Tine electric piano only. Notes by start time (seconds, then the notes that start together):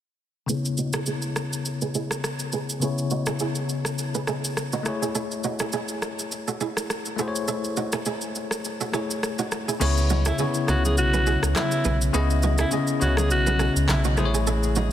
0.46 C#3 B3 E4
0.51 C#5
2.79 C#3 B3 E4
2.84 C#5
4.83 A3 E4 G#4
4.88 C#5
7.16 A3 E4 G#4
7.21 C5
7.28 C#5
8.92 A3 E4 G#4 C#5
9.80 C#3 B3 E4 C#5
10.38 C#3 B3 E4 C#5
10.67 C#3 B3 E4 C#5
12.13 C#3 B3 E4 D#5
12.71 C#3 B3 E4 D#5
13.00 C#3 B3 E4 C#5
14.16 A3 E4 G#4 C5
14.25 C#5